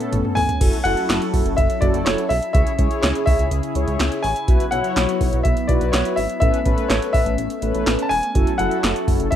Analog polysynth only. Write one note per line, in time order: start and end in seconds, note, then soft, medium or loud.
0.00 0.40 B3 medium
0.00 0.40 C#4 medium
0.00 0.40 A4 medium
0.61 0.78 E4 medium
0.61 0.78 F#4 medium
0.61 0.78 A4 medium
0.85 1.54 E4 medium
0.85 1.54 F#4 medium
0.85 1.54 A4 medium
1.82 2.33 E4 medium
1.82 2.33 F#4 medium
1.82 2.33 A4 medium
2.55 2.72 E4 medium
2.55 2.72 G#4 medium
2.55 2.72 C#5 medium
2.79 3.47 E4 medium
2.79 3.47 G#4 medium
2.79 3.47 C#5 medium
3.76 4.27 E4 medium
3.76 4.27 G#4 medium
3.76 4.27 C#5 medium
4.48 4.65 E4 medium
4.48 4.65 F#4 medium
4.48 4.65 B4 medium
4.72 5.41 E4 medium
4.72 5.41 F#4 medium
4.72 5.41 C#5 medium
5.69 6.20 E4 medium
5.69 6.20 F#4 medium
5.69 6.20 B4 medium
6.42 6.59 C#4 medium
6.42 6.59 A4 medium
6.42 6.59 B4 medium
6.66 7.34 C#4 medium
6.66 7.34 A4 medium
6.66 7.34 B4 medium
7.63 8.14 C#4 medium
7.63 8.14 A4 medium
7.63 8.14 B4 medium
8.35 8.52 E4 medium
8.35 8.52 F#4 medium
8.35 8.52 A4 medium
8.59 9.28 E4 medium
8.59 9.28 F#4 medium
8.59 9.28 A4 medium